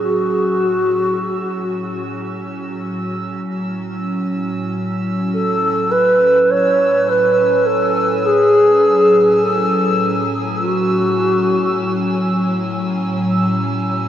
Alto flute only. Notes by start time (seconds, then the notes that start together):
0.02 F#4
5.34 A4
5.91 B4
6.51 C#5
7.09 B4
7.66 A4
8.26 G#4
9.42 A4
10.60 F#4